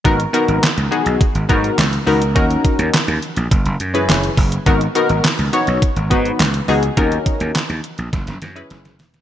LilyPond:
<<
  \new Staff \with { instrumentName = "Analog polysynth" } { \time 4/4 \key gis \minor \tempo 4 = 104 <b dis' fis' ais'>16 r16 <b dis' fis' ais'>8 r8 <b dis' fis' gis'>8 r8 <b dis' fis' ais'>8 r8 <b dis' fis' ais'>16 r16 | <cis' dis' fis' ais'>4 r4. r16 <cis' e' gis' b'>8 r8. | <b dis' fis' ais'>16 r16 <b dis' fis' ais'>8 r8 <b dis' fis' cis''>8 r8 <b dis' fis' b'>8 r8 <b dis' fis' gis'>16 r16 | <cis' dis' fis' ais'>4 r4. r16 <cis' e' gis' b'>8 r8. | }
  \new Staff \with { instrumentName = "Slap bass" } { \clef bass \time 4/4 \key gis \minor gis,,8 r16 gis,,16 r16 cis,16 r16 b,,16 r16 gis,,16 gis,8 cis,8 cis,8 | dis,8 r16 dis,16 r16 dis,16 r16 ais,,16 fis,,16 fis,,16 fis,8 fis,,8 fis,,8 | gis,,8 r16 gis,,16 r16 cis,16 r16 b,,16 r16 gis,,16 gis,8 cis,8 cis,8 | dis,8 r16 dis,16 r16 dis,16 r16 ais,,16 fis,,16 fis,,16 fis,8 fis,,8 e,,8 | }
  \new DrumStaff \with { instrumentName = "Drums" } \drummode { \time 4/4 <hh bd>16 hh16 hh16 hh16 <hc hh sn>16 hh16 hh16 hh16 <hh bd>16 hh16 <hh bd>16 hh16 <hc hh sn>16 hh16 hho16 hh16 | <hh bd>16 hh16 <hh bd>16 hh16 <hc hh sn>16 hh16 hh16 hh16 <hh bd>16 hh16 hh16 hh16 <hc hh sn>16 hh16 <hho bd>16 hh16 | <hh bd>16 hh16 hh16 hh16 <hc hh sn>16 hh16 hh16 hh16 <hh bd>16 hh16 <hh bd>16 hh16 <hc hh sn>16 hh16 hho16 hh16 | <hh bd>16 hh16 <hh bd>16 hh16 <hc hh sn>16 hh16 hh16 hh16 <hh bd sn>16 <hh sn>16 <hh sn>16 hh16 <hh sn>16 <hh sn>16 <hho sn>16 <hh sn>16 | }
>>